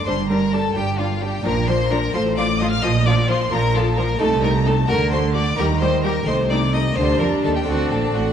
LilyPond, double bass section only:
\new Staff \with { instrumentName = "Double bass section" } { \clef bass \time 6/8 \key g \minor \tempo 4. = 87 g,,4. g,,4. | bes,,4. a,,4. | bes,,4. bes,,4. | c,4. d,4. |
ees,4. c,4. | d,8 f,8 ees,8 d,8 bes,,8 a,,8 | }